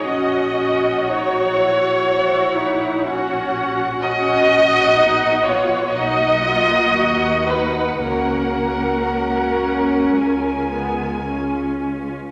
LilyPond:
<<
  \new Staff \with { instrumentName = "Violin section" } { \time 4/4 \key fis \mixolydian \tempo 4 = 59 fis''4 fis''2 fis''4 | \key fis \major fis''2 fis''2 | fis''2 gis''2 | }
  \new Staff \with { instrumentName = "Violin section" } { \time 4/4 \key fis \mixolydian dis''4 cis''2~ cis''8 r8 | \key fis \major dis''4. cis''8 dis''4. b'8 | ais'2. r4 | }
  \new Staff \with { instrumentName = "Cello section" } { \time 4/4 \key fis \mixolydian fis'2 fis'8 e'8 fis'4 | \key fis \major fis'4 dis'8 eis'8 dis'8 eis'8 fis'8 dis'8 | cis'4 cis'4. b8 cis'4 | }
  \new Staff \with { instrumentName = "Viola section" } { \time 4/4 \key fis \mixolydian << { fis'4 dis'8 e'8 fis'4 fis'4 | \key fis \major fis'2 fis'2 | fis'2 eis'2 | } \\ { cis'8 cis'8 fis'4 e'8 dis'8 cis'4 | cis'4 b4 ais2 | ais2 gis2 | } >> }
  \new Staff \with { instrumentName = "Double bass section" } { \clef bass \time 4/4 \key fis \mixolydian ais,,1 | \key fis \major ais,,2 b,,4 dis,4 | cis,2 cis,2 | }
>>